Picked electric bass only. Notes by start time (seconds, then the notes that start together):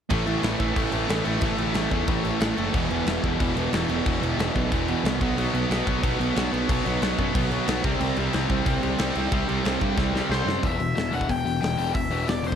0.11 A1
0.27 A1
0.43 A1
0.60 A1
0.77 A1
0.93 A1
1.09 A1
1.26 A1
1.42 A1
1.59 A1
1.75 A1
1.92 E2
2.08 A1
2.41 A1
2.58 F#1
2.74 E1
2.90 E1
3.06 E1
3.24 E1
3.41 E1
3.56 E1
3.73 E1
3.89 E1
4.06 E1
4.22 E1
4.38 E1
4.56 B1
4.72 E1
5.04 C2
5.21 B1
5.36 B1
5.53 B1
5.70 B1
5.87 B1
6.03 B1
6.20 B1
6.37 B1
6.53 B1
6.69 B1
6.86 B1
7.02 B1
7.19 F#2
7.35 B1
7.68 B1
7.84 C2
8.01 C2
8.17 C2
8.34 C2
8.50 C2
8.66 C2
8.83 C2
8.99 C2
9.16 C2
9.32 C2
9.49 C2
9.65 C2
9.81 G2
9.97 C2
10.29 C2
10.46 F#2
10.63 E1
10.79 E1
10.97 E1
11.13 E1
11.30 E1
11.45 E1
11.62 E1
11.78 E1
11.95 E1
12.11 E1
12.28 E1
12.43 E1